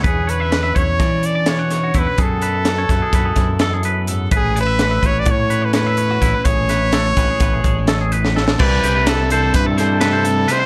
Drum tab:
CC |------------------|------------------|------------------|------------------|
HH |x-x-x-x-x-x-x-x-x-|x-x-x-x-x-x-x-x-x-|x-x-x-x-x-x-x-x-x-|x-x-x-x-x-x-x-x---|
SD |----o---o---o-o---|----o-o-o-o-o-----|----o-------o---o-|--o-o-o-o---o--ooo|
BD |o-----o-o-------o-|o-----o-o-o-------|o-----o-o-------o-|o-----o-o-o-------|

CC |x-----------------|
HH |--x-x-x-x-x-x-x-x-|
SD |--o-o---o-o-o---o-|
BD |o-------o---------|